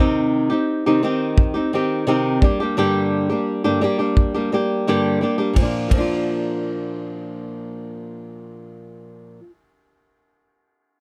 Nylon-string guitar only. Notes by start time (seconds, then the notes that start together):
Already playing: C3
0.00 D#3 C4 D#4 G4
0.50 C4 D#4 G4
0.86 C3 D#3 C4 D#4 G4
1.03 D#3 C4 D#4 G4
1.54 C4 D#4 G4
1.73 D#3 C4 D#4 G4
2.07 C3 D#3 C4 D#4 G4
2.42 G3 A#3 D4 G4
2.60 G3 A#3 D4 G4
2.77 G2 D3 G3 A#3 D4 G4
3.30 G3 A#3 D4 G4
3.64 G2 D3 G3 A#3 D4 G4
3.81 G3 A#3 D4 G4
3.99 G3 A#3 D4 G4
4.34 G3 A#3 D4 G4
4.52 G3 A#3 D4 G4
4.87 G2 D3 G3 A#3 D4 G4
5.21 G3 A#3 D4 G4
5.38 G3 A#3 D4 G4
5.53 A#2 F3
5.60 A#3 D4
5.65 F4
5.89 A#2 F3
5.95 A#3 D4
6.00 F4